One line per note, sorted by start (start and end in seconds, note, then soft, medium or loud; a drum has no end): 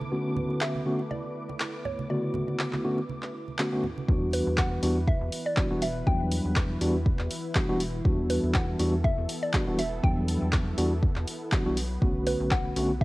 0.00 4.08 D3 medium
0.00 4.05 A3 medium
0.00 4.05 B3 medium
0.00 4.04 E4 medium
0.00 4.05 B4 medium
0.00 4.08 B4 medium
0.00 4.08 A5 medium
0.00 4.10 D6 medium
0.00 high conga medium
0.12 0.83 D3 medium
0.12 0.83 A3 medium
0.12 0.83 B3 medium
0.12 0.83 C#4 medium
0.12 0.84 F#4 medium
0.36 high conga medium
0.36 low conga medium
0.50 high bongo soft
0.61 1.12 E5 loud
0.61 clap loud
0.75 high conga medium
0.86 1.00 D3 medium
0.86 1.00 A3 medium
0.86 1.00 B3 medium
0.86 1.00 C#4 medium
0.86 1.00 F#4 medium
0.99 high bongo medium
1.11 1.88 D5 loud
1.11 high conga medium
1.49 high bongo medium
1.49 high conga medium
1.60 clap loud
1.85 2.11 C#5 medium
1.85 low conga medium
1.99 high conga medium
2.10 2.82 C#3 medium
2.10 2.82 D3 medium
2.10 2.82 A3 medium
2.10 2.82 B3 medium
2.10 2.82 F#4 medium
2.10 2.56 D5 medium
2.34 high conga medium
2.34 low conga medium
2.48 high bongo medium
2.59 clap loud
2.73 clap soft
2.73 high conga medium
2.84 2.98 D3 medium
2.84 2.98 A3 medium
2.84 2.98 B3 medium
2.84 2.98 C#4 medium
2.84 2.99 F#4 loud
2.98 high bongo medium
3.09 high conga medium
3.22 clap soft
3.48 high conga medium
3.58 3.69 D3 medium
3.58 3.69 A3 medium
3.58 3.69 B3 medium
3.58 3.69 C#4 medium
3.58 3.69 F#4 medium
3.58 clap loud
3.72 3.84 D3 medium
3.72 3.84 A3 medium
3.72 3.84 B3 medium
3.72 3.84 C#4 medium
3.72 3.84 F#4 medium
3.83 low conga medium
3.98 high conga medium
4.08 4.42 E2 loud
4.08 4.80 E3 medium
4.08 11.73 E3 medium
4.08 4.80 G3 medium
4.08 4.80 B3 medium
4.08 13.04 B3 medium
4.08 4.80 D4 medium
4.08 11.73 E4 medium
4.08 4.80 F#4 medium
4.08 8.01 B4 medium
4.08 kick loud
4.33 4.59 B4 medium
4.33 open hi-hat loud
4.47 4.79 E2 medium
4.57 5.04 F#5 loud
4.57 kick loud
4.57 clap loud
4.83 5.17 E2 medium
4.83 4.97 E3 medium
4.83 4.97 G3 medium
4.83 4.97 B3 medium
4.83 4.97 D4 medium
4.83 4.97 F#4 loud
4.83 open hi-hat loud
5.08 5.47 E5 loud
5.08 kick loud
5.21 5.30 E2 medium
5.32 open hi-hat loud
5.46 5.83 D5 loud
5.57 5.67 E3 medium
5.57 5.67 G3 medium
5.57 5.67 B3 medium
5.57 5.67 D4 medium
5.57 5.68 F#4 medium
5.57 kick loud
5.57 clap loud
5.71 6.03 E1 loud
5.71 5.83 E3 medium
5.71 5.83 G3 medium
5.71 5.83 B3 medium
5.71 5.83 D4 medium
5.71 5.83 F#4 medium
5.82 6.08 E5 loud
5.82 open hi-hat loud
6.07 6.41 E2 loud
6.07 6.78 E3 medium
6.07 6.79 F#3 medium
6.07 6.78 G3 medium
6.07 6.78 B3 medium
6.07 6.79 D4 medium
6.07 7.02 G5 loud
6.07 kick loud
6.32 open hi-hat loud
6.45 6.78 E2 medium
6.56 kick loud
6.56 clap loud
6.81 7.15 E2 medium
6.81 6.95 E3 medium
6.81 6.95 G3 medium
6.81 6.95 B3 medium
6.81 6.95 D4 medium
6.81 6.95 F#4 loud
6.81 open hi-hat loud
7.06 kick loud
7.19 7.29 E2 medium
7.19 clap soft
7.31 open hi-hat loud
7.55 7.66 E3 medium
7.55 7.66 G3 medium
7.55 7.66 B3 medium
7.55 7.66 D4 medium
7.55 7.66 F#4 medium
7.55 kick loud
7.55 clap loud
7.69 8.02 E1 loud
7.69 7.81 E3 medium
7.69 7.81 G3 medium
7.69 7.81 B3 medium
7.69 7.81 D4 medium
7.69 7.81 F#4 loud
7.80 open hi-hat loud
8.05 8.39 E2 loud
8.05 8.77 E3 medium
8.05 8.77 G3 medium
8.05 8.77 B3 medium
8.05 8.77 D4 medium
8.05 8.77 F#4 medium
8.05 11.73 A4 medium
8.05 kick loud
8.30 8.55 B4 medium
8.30 open hi-hat loud
8.43 8.76 E2 medium
8.54 9.06 F#5 loud
8.54 kick loud
8.54 clap loud
8.79 9.13 E2 medium
8.79 8.94 E3 medium
8.79 8.94 G3 medium
8.79 8.94 B3 medium
8.79 8.94 D4 medium
8.79 8.94 F#4 loud
8.79 open hi-hat loud
9.04 9.44 E5 loud
9.04 kick loud
9.18 9.27 E2 medium
9.29 open hi-hat loud
9.43 9.80 D5 loud
9.53 9.64 E3 medium
9.53 9.64 G3 medium
9.53 9.64 B3 medium
9.53 9.64 D4 medium
9.53 9.64 F#4 medium
9.53 kick loud
9.53 clap loud
9.67 10.00 E1 loud
9.67 9.79 E3 medium
9.67 9.79 G3 medium
9.67 9.79 B3 medium
9.67 9.79 D4 medium
9.67 9.79 F#4 loud
9.79 9.90 E5 loud
9.79 open hi-hat loud
10.03 10.37 E2 loud
10.03 10.75 E3 medium
10.03 10.75 F#3 medium
10.03 10.75 G3 medium
10.03 10.75 B3 medium
10.03 10.75 D4 medium
10.03 10.99 G5 loud
10.03 kick loud
10.28 open hi-hat loud
10.42 10.74 E2 medium
10.53 kick loud
10.53 clap loud
10.78 11.12 E2 medium
10.78 10.92 E3 medium
10.78 10.92 G3 medium
10.78 10.92 B3 medium
10.78 10.92 D4 medium
10.78 10.92 F#4 loud
10.78 open hi-hat loud
11.03 kick loud
11.16 11.25 E2 loud
11.16 clap soft
11.27 open hi-hat loud
11.52 11.63 E3 medium
11.52 11.63 G3 medium
11.52 11.63 B3 medium
11.52 11.63 D4 medium
11.52 11.63 F#4 medium
11.52 kick loud
11.52 clap loud
11.66 11.98 B1 medium
11.66 11.76 E3 medium
11.66 11.76 G3 medium
11.66 11.76 B3 medium
11.66 11.76 D4 medium
11.66 11.76 F#4 loud
11.77 13.04 F#3 medium
11.77 13.04 B4 medium
11.77 open hi-hat loud
12.02 12.36 B1 loud
12.02 12.73 D3 medium
12.02 12.73 A3 medium
12.02 12.74 B3 medium
12.02 12.74 C#4 medium
12.02 12.74 F#4 medium
12.02 kick loud
12.27 12.52 B4 medium
12.27 open hi-hat loud
12.40 12.73 B1 medium
12.51 13.03 F#5 loud
12.51 kick loud
12.51 clap loud
12.76 13.04 B1 medium
12.76 12.90 D3 medium
12.76 12.90 A3 medium
12.76 12.90 B3 medium
12.76 12.90 C#4 medium
12.76 12.90 F#4 loud
12.76 open hi-hat loud
13.01 13.04 E5 loud
13.01 kick loud